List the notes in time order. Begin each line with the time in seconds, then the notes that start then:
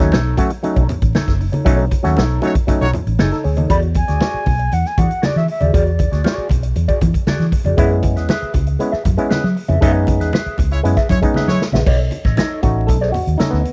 0.00 D#2 F#3 A3 C#4 D#4 A4 C#5, kick, snare
0.12 B1 D#4 A4 C#5, snare, high conga
0.37 F#3 A3 C#4 F#4, muted clean electric guitar stroke, kick, closed hi-hat, muted conga
0.50 muted clean electric guitar stroke, closed hi-hat
0.63 F#3 A3 C#4 D#4, muted clean electric guitar stroke, closed hi-hat, muted conga
0.76 B1 D#4 A4 C#5, kick, closed hi-hat
0.89 muted clean electric guitar stroke, closed hi-hat, muted conga, low conga
1.01 A1 C#4 D#4, muted clean electric guitar stroke, kick, closed hi-hat
1.15 D#4 A4 C#5, snare, high conga
1.27 F#1, kick, snare, closed hi-hat
1.39 C#4 D#4, muted clean electric guitar stroke, open hi-hat
1.52 D#4 A4 C#5, closed hi-hat, high conga
1.65 B1 F#3 A3 C#4 D#4 A4 C#5, kick, closed hi-hat
1.78 muted clean electric guitar stroke, closed hi-hat
1.91 muted clean electric guitar stroke, kick, closed hi-hat, muted conga
2.03 D#2 F#3 A3 C#4 D#4 F#4 A4 C#5, snare, closed hi-hat
2.17 B1 D#4 A4 C#5, snare, high conga
2.30 closed hi-hat
2.42 F#3 A3 C#4 D#4 F#4 C#5, muted clean electric guitar stroke, closed hi-hat, muted conga
2.55 muted clean electric guitar stroke, kick, closed hi-hat
2.67 F#3 A3 C#4 D#4, muted clean electric guitar stroke, kick, closed hi-hat, muted conga
2.81 B1 A3 D#4 F#4 A4 C#5, snare, closed hi-hat
2.93 muted clean electric guitar stroke, closed hi-hat, muted conga, low conga
3.06 A1 C#4 D#4, muted clean electric guitar stroke, closed hi-hat
3.19 F#1 D#4 G#4 A4 C#5, snare, high conga
3.31 D#4 A4, snare, closed hi-hat
3.44 D2 G#4 C#5, muted clean electric guitar stroke, open hi-hat
3.57 D#2 D#4 A4 C#5 D#5, closed hi-hat, high conga
3.70 E2 F#4 G#4 D5 B5, kick, closed hi-hat
3.82 muted clean electric guitar stroke, closed hi-hat
3.94 G#5, muted clean electric guitar stroke, kick, closed hi-hat, muted conga
4.08 D2 F#4 G#4 D5, snare, closed hi-hat
4.21 F#4 G#4 D5, snare, high conga
4.34 muted fingered electric bass stroke, closed hi-hat
4.46 B1, muted clean electric guitar stroke, kick, open hi-hat, muted conga
4.59 muted clean electric guitar stroke, closed hi-hat
4.72 E2 F#5, muted clean electric guitar stroke, closed hi-hat, muted conga
4.85 G#5, snare, closed hi-hat
4.97 E3 F#4 G#4 D5 F#5, kick, closed hi-hat, muted conga, low conga
5.10 muted clean electric guitar stroke, closed hi-hat
5.22 F#4 G#4 D5, snare, high conga
5.36 E3 E5, snare, closed hi-hat
5.48 E5, muted clean electric guitar stroke, open hi-hat
5.60 D#2 F#4 G#4 D5, closed hi-hat, high conga
5.73 E2 F#4 G#4 D5, kick, closed hi-hat
5.86 muted clean electric guitar stroke, closed hi-hat
5.99 muted clean electric guitar stroke, kick, closed hi-hat, muted conga
6.12 D2 F#4 G#4 D5, snare, closed hi-hat
6.24 F#4 G#4 D5, snare, high conga
6.38 muted fingered electric bass stroke, closed hi-hat
6.49 B1, muted clean electric guitar stroke, kick, closed hi-hat, muted conga
6.63 muted clean electric guitar stroke, closed hi-hat
6.76 E2, muted clean electric guitar stroke, closed hi-hat, muted conga
6.88 F#4 G#4 D5, kick, closed hi-hat
7.01 E3, muted clean electric guitar stroke, kick, closed hi-hat, muted conga, low conga
7.14 muted clean electric guitar stroke, kick, closed hi-hat
7.27 F#4 G#4 D5, snare, high conga
7.39 E3, snare, closed hi-hat
7.52 muted clean electric guitar stroke, kick, open hi-hat
7.65 F2 F#4 G#4 D5, closed hi-hat, high conga
7.77 F#2 G#3 B3 C#4 E4 G#4 B4 E5, kick, closed hi-hat
7.90 muted clean electric guitar stroke, closed hi-hat
8.03 muted clean electric guitar stroke, kick, closed hi-hat, muted conga
8.16 E2 G#4 B4 E5, snare, closed hi-hat
8.29 G#4 B4 E5, snare, high conga
8.41 muted fingered electric bass stroke, closed hi-hat
8.54 C#2, muted clean electric guitar stroke, kick, closed hi-hat, muted conga
8.66 muted clean electric guitar stroke, closed hi-hat
8.79 G#3 B3 C#4 E4, muted clean electric guitar stroke, closed hi-hat, muted conga
8.92 G#4 B4 E5, muted fingered electric bass stroke, snare
9.05 F#2 C#4 E4, muted clean electric guitar stroke, kick, closed hi-hat, muted conga, low conga
9.17 G#3 B3 C#4 E4, muted clean electric guitar stroke, closed hi-hat
9.29 G#4 B4 E5, snare, high conga
9.44 F#3, snare
9.56 muted clean electric guitar stroke, open hi-hat
9.68 F2 C#4 E4 G#4 B4 E5, closed hi-hat, high conga
9.81 F#2 G#3 A3 C#4 D#4 G#4 B4 E5, kick, closed hi-hat
9.87 B3
9.95 muted clean electric guitar stroke
10.07 muted clean electric guitar stroke, kick, closed hi-hat, muted conga
10.20 E2 G#4 B4 E5, snare, closed hi-hat
10.33 G#4 B4 E5, snare, high conga
10.46 muted fingered electric bass stroke, closed hi-hat
10.58 C#2, muted clean electric guitar stroke, kick, closed hi-hat, muted conga
10.71 G#3 E4 C#5, muted clean electric guitar stroke, closed hi-hat
10.83 F#2 G#3 B3 C#4 E4, muted clean electric guitar stroke, closed hi-hat
10.97 G#4 B4 E5, kick, snare, closed hi-hat
11.09 F#3 G#3 C#4 E4 C#5, muted clean electric guitar stroke, kick, closed hi-hat, muted conga, low conga
11.22 G#3 B3 C#4 D#4, muted clean electric guitar stroke, kick, closed hi-hat
11.34 G#4 B4 E5, snare, high conga
11.48 F#3 G#3 E4 C#5, snare, high conga
11.61 muted clean electric guitar stroke, snare
11.72 A#1 C#4 F#4 G#4 B4 E5, snare, high conga
11.86 B1 A4 C#5 D#5, kick, crash
11.99 muted clean electric guitar stroke
12.11 muted clean electric guitar stroke, closed hi-hat, muted conga
12.25 A1 A4 C#5 D#5, kick, snare
12.37 D#4 A4 C#5 D#5, snare, closed hi-hat, high conga
12.63 A1 A3 C#4 D#4 F#4, muted clean electric guitar stroke, kick, closed hi-hat, muted conga
12.76 muted clean electric guitar stroke
12.87 B1 A4, muted clean electric guitar stroke, kick, closed hi-hat, muted conga
13.01 A4 C#5 D#5, snare
13.12 F#4, muted clean electric guitar stroke, open hi-hat, muted conga, low conga
13.27 D#2, muted clean electric guitar stroke, closed hi-hat
13.38 A3 C#4 D#4 A4 C#5 D#5, muted fingered electric bass stroke, snare, closed hi-hat, high conga
13.50 D2 B3, snare
13.64 muted clean electric guitar stroke, closed hi-hat